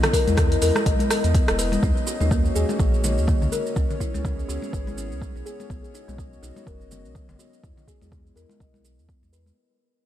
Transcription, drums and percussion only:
0.03 cross-stick, closed hi-hat, low conga, shaker
0.13 kick, open hi-hat, shaker
0.27 closed hi-hat, high conga, shaker
0.37 kick, cross-stick, closed hi-hat, low conga, shaker
0.52 closed hi-hat, shaker
0.62 open hi-hat, shaker
0.75 cross-stick, high conga, shaker
0.86 kick, closed hi-hat, shaker
0.99 closed hi-hat, high conga, shaker
1.11 cross-stick, open hi-hat, shaker
1.24 closed hi-hat, shaker
1.34 kick, closed hi-hat, shaker
1.48 cross-stick, closed hi-hat, high conga, shaker
1.59 open hi-hat, shaker
1.72 closed hi-hat, high conga, shaker
1.83 kick, shaker
1.97 shaker
2.07 shaker
2.21 high conga, shaker
2.31 kick, shaker
2.45 shaker
2.56 high conga, shaker
2.69 high conga, shaker
2.79 kick, shaker
2.94 shaker
3.04 high conga, low conga, shaker
3.18 shaker
3.27 kick, low conga, shaker
3.42 high conga, low conga, shaker
3.52 shaker
3.66 shaker
3.76 kick, shaker
3.90 low conga, shaker
4.00 kick, shaker
4.14 high conga, shaker
4.25 kick, low conga, shaker
4.39 shaker
4.49 shaker
4.62 high conga, shaker
4.73 kick, shaker
4.87 high conga, shaker
4.98 shaker
5.12 shaker
5.22 kick, shaker
5.36 high conga, shaker
5.46 shaker
5.60 high conga, shaker
5.70 kick, shaker
5.84 shaker
5.95 shaker
6.08 high conga, shaker
6.18 kick, shaker
6.33 shaker
6.43 high conga, shaker
6.56 high conga, shaker
6.67 kick, shaker
6.81 shaker
6.91 high conga, low conga, shaker
7.05 shaker
7.15 kick, low conga, shaker
7.29 high conga, low conga, shaker
7.39 shaker
7.53 shaker
7.64 kick, shaker
7.77 low conga, shaker
7.88 kick, shaker
8.01 high conga, shaker
8.12 kick, low conga, shaker
8.27 shaker
8.36 high conga, shaker
8.49 high conga, shaker
8.60 kick, shaker
8.74 high conga, shaker
8.85 shaker
8.99 shaker
9.09 kick, shaker
9.23 high conga, shaker
9.33 shaker
9.46 high conga, shaker

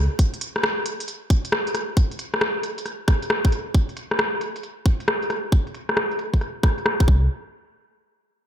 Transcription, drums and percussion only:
0.19 kick, closed hi-hat
0.34 closed hi-hat
0.41 closed hi-hat
0.56 cross-stick
0.63 cross-stick
0.86 closed hi-hat
1.00 closed hi-hat
1.08 closed hi-hat
1.30 kick, closed hi-hat
1.45 closed hi-hat
1.52 cross-stick
1.67 closed hi-hat
1.75 cross-stick, closed hi-hat
1.97 kick, closed hi-hat
2.11 closed hi-hat
2.19 closed hi-hat
2.34 cross-stick
2.41 cross-stick
2.63 closed hi-hat
2.78 closed hi-hat
2.86 cross-stick, closed hi-hat
3.08 kick, cross-stick, closed hi-hat
3.22 closed hi-hat
3.30 cross-stick
3.45 kick, closed hi-hat
3.52 closed hi-hat
3.74 kick, closed hi-hat
3.89 closed hi-hat
3.97 closed hi-hat
4.11 cross-stick
4.19 cross-stick
4.41 closed hi-hat
4.56 closed hi-hat
4.63 closed hi-hat
4.86 kick, closed hi-hat
5.00 closed hi-hat
5.08 cross-stick
5.22 closed hi-hat
5.30 cross-stick, closed hi-hat
5.52 kick, closed hi-hat
5.67 closed hi-hat
5.74 closed hi-hat
5.89 cross-stick
5.97 cross-stick
6.11 closed hi-hat
6.19 closed hi-hat
6.34 kick, closed hi-hat
6.41 cross-stick, closed hi-hat
6.63 kick, cross-stick, closed hi-hat
6.78 closed hi-hat
6.86 cross-stick
7.00 kick, closed hi-hat
7.08 kick

